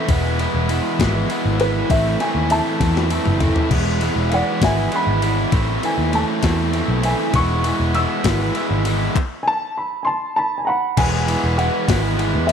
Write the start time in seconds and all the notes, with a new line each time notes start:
Already playing: E4 E5
0.09 E1 E3 G#3 B3 E4, kick, ride
0.39 E3 G#3 B3 E4, ride
0.54 E1
0.69 E3 G#3 B3 E4, ride
0.99 G#1 E3 G#3 B3 E4, kick, snare, ride
1.30 E3 G#3 B3 E4, ride
1.45 G#1
1.60 E3 G#3 B3 E4 B4, ride
1.90 A1 A2 E3 A3 C4 E4 E5, kick, ride
2.20 A2 E3 A3 C4 E4 G#5, ride
2.35 D#2
2.50 A2 E3 A3 C4 E4 E5 A5, ride
2.80 E2 A2 E3 A3 C4 E4, kick, high tom, ride
2.97 snare
3.10 A2 E3 A3 C4 E4, ride
3.25 F#1, mid tom
3.40 A2 E3 A3 C4 E4, floor tom, ride
3.56 floor tom
3.71 E1 E3 G#3 B3 E4, kick, crash
4.01 E3 G#3 B3 E4, ride
4.16 E1
4.30 E3 G#3 B3 E4 D5 F5, ride
4.34 F#5
4.61 G#1 E3 G#3 B3 E4 E5 G#5, kick, snare, ride
4.92 E3 G#3 B3 E4 B5, ride
5.07 G#1
5.22 E3 G#3 B3 E4, ride
5.52 A1 A2 E3 A3 C4 E4, kick, ride
5.83 A2 E3 A3 C4 E4 G#5, ride
5.98 D#2
6.13 A2 E3 A3 C4 E4 A5, ride
6.43 E2 A2 E3 A3 C4 E4, kick, snare, ride
6.73 A2 E3 A3 C4 E4, ride
6.88 B1
7.03 A2 E3 A3 C4 E4 G#5, ride
7.33 E1 E3 G#3 B3 E4 C#6, kick, ride
7.64 E3 G#3 B3 E4, ride
7.80 E1
7.94 E3 G#3 B3 E4 E6, ride
8.24 G#1 E3 G#3 B3 E4, kick, snare, ride
8.55 E3 G#3 B3 E4, ride
8.71 G#1
8.85 E3 G#3 B3 E4, ride
9.15 kick, clap
9.43 G#5
9.48 A5
9.78 B5
10.03 G#5 A5 C6
10.36 A5 B5
10.58 G#5
10.65 F#5 A#5 B5
10.97 E1 E3 G#3 B3 E4 G#5, kick, crash, ride
11.27 E3 G#3 B3 E4, ride
11.44 E1
11.58 E3 G#3 B3 E4 F#5, ride
11.88 G#1 E3 G#3 B3 E4, kick, snare, ride
12.18 E3 G#3 B3 E4, ride
12.34 E2
12.47 E3 G#3 E5